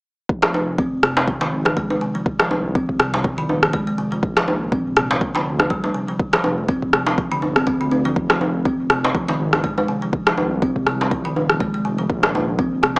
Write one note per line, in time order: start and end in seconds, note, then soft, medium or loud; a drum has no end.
0.29 1.47 F1 medium
0.29 kick loud
0.42 0.53 F3 medium
0.42 cross-stick medium
0.42 djembe slap medium
0.54 djembe tone medium
0.78 0.92 C4 medium
0.78 kick loud
1.03 1.16 C3 medium
1.03 cross-stick medium
1.17 djembe slap medium
1.28 1.40 F3 medium
1.28 kick loud
1.41 1.51 D#3 medium
1.41 djembe slap medium
1.52 1.97 G#1 medium
1.65 1.76 F3 medium
1.65 cross-stick medium
1.65 djembe tone medium
1.77 1.89 G#3 loud
1.77 kick loud
1.90 2.00 G#3 medium
1.90 djembe tone medium
2.01 2.14 C3 medium
2.15 2.25 F3 medium
2.26 kick loud
2.39 2.49 F3 medium
2.39 cross-stick medium
2.39 djembe slap medium
2.50 3.44 C2 medium
2.50 djembe tone medium
2.75 2.88 C4 medium
2.75 kick loud
2.89 kick medium
3.00 3.13 C3 medium
3.00 cross-stick medium
3.14 djembe slap medium
3.24 3.37 F3 medium
3.24 kick loud
3.38 3.48 D#3 loud
3.49 3.93 D#1 medium
3.49 djembe tone medium
3.63 3.73 F3 medium
3.63 cross-stick medium
3.73 3.86 G#3 loud
3.73 kick loud
3.87 3.97 G#3 medium
3.98 4.17 F1 medium
3.98 4.11 C3 medium
4.12 4.22 F3 medium
4.23 5.41 A#1 loud
4.23 kick loud
4.37 4.46 F3 medium
4.37 cross-stick loud
4.37 djembe slap medium
4.48 djembe tone medium
4.72 4.85 C4 medium
4.72 kick loud
4.97 5.10 C3 medium
4.97 cross-stick medium
5.11 djembe slap medium
5.21 5.33 F3 medium
5.21 kick loud
5.35 5.45 D3 medium
5.35 djembe slap medium
5.46 5.90 D2 medium
5.59 5.69 F3 medium
5.59 cross-stick medium
5.59 djembe tone medium
5.70 5.83 G3 loud
5.70 kick loud
5.84 5.94 G3 medium
5.84 djembe tone medium
5.94 6.08 C3 medium
6.08 6.18 F3 medium
6.19 kick loud
6.33 6.43 F3 loud
6.33 cross-stick loud
6.33 djembe slap medium
6.44 7.38 F1 medium
6.44 djembe tone loud
6.68 6.82 C4 medium
6.68 kick loud
6.82 kick medium
6.93 7.06 C3 loud
6.93 cross-stick medium
7.07 djembe slap medium
7.18 7.30 F3 medium
7.18 kick loud
7.32 7.41 D3 loud
7.42 7.67 G1 medium
7.42 djembe tone medium
7.56 7.66 C4 medium
7.56 cross-stick medium
7.67 8.11 D2 medium
7.67 7.79 C4 loud
7.67 kick loud
7.81 7.87 D3 loud
7.91 8.05 C4 medium
7.91 djembe tone medium
8.05 8.15 F3 loud
8.16 9.34 F1 loud
8.16 kick loud
8.30 8.40 F3 loud
8.30 cross-stick medium
8.30 djembe slap medium
8.41 djembe tone medium
8.65 8.78 C4 medium
8.65 kick loud
8.90 9.03 C3 loud
8.90 cross-stick medium
9.04 djembe slap medium
9.15 9.27 F3 medium
9.15 kick loud
9.28 9.38 D#3 loud
9.28 djembe slap medium
9.39 9.84 G#1 medium
9.53 9.63 F3 medium
9.53 cross-stick medium
9.53 djembe tone medium
9.64 9.76 G#3 medium
9.64 kick loud
9.78 9.87 G#3 medium
9.78 djembe tone medium
9.88 10.01 C3 medium
10.02 10.12 F3 medium
10.13 kick loud
10.27 10.37 F3 medium
10.27 cross-stick medium
10.27 djembe slap medium
10.38 11.31 C2 medium
10.38 djembe tone medium
10.62 10.75 C4 medium
10.62 kick loud
10.76 kick medium
10.87 11.00 C3 loud
10.87 cross-stick medium
11.01 djembe slap medium
11.11 11.24 F3 medium
11.11 kick loud
11.25 11.35 D#3 loud
11.36 11.80 D#1 medium
11.36 djembe tone medium
11.50 11.59 F3 medium
11.50 cross-stick medium
11.60 11.73 G#3 loud
11.60 kick loud
11.74 11.84 G#3 medium
11.85 12.04 F1 medium
11.85 11.98 C3 medium
11.98 12.08 F3 medium
12.10 12.99 A#1 loud
12.10 kick loud
12.23 12.33 F3 medium
12.23 cross-stick medium
12.23 djembe slap medium
12.35 djembe tone medium
12.59 12.72 C4 medium
12.59 kick loud
12.83 12.96 C3 loud
12.83 cross-stick medium